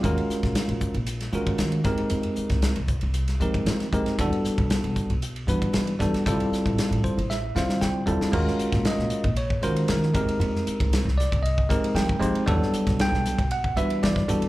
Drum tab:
CC |----------------|----------------|----------------|----------------|
RD |xx-xxx-xxx-xxx-x|xx-xxx-xxx-xxx-x|xx-xxx-xxx-xxx-x|xx-xxx-x--------|
HH |p-p-p-p-p-p-p-p-|p-p-p-p-p-p-p-p-|p-p-p-p-p-p-p-p-|p-p-p-p-p-p-p-p-|
SD |--ooo----o--o-o-|---oo----o--oo-o|--o-o-------o-oo|--o-o---o-ooo--o|
FT |----------------|----------------|----------------|--------------o-|
BD |o--o--o----o--o-|---o--o----o--o-|o--o--o----o--o-|o--o--o---------|

CC |x---------------|----------------|----------------|
RD |--xxx-xxx-xxx-xx|x-xxx-xxx-xxx-xx|x-xxx-xxx-xxx-xx|
HH |--p---p---p---p-|--p---p---p---p-|--p---p---p---p-|
SD |-o-ooo------oo--|-o--ooo-----o---|-o-oooo-----oo--|
FT |----------------|----------------|----------------|
BD |o--o---o-o----o-|---o---o-oo--o--|o--o---o-o---o--|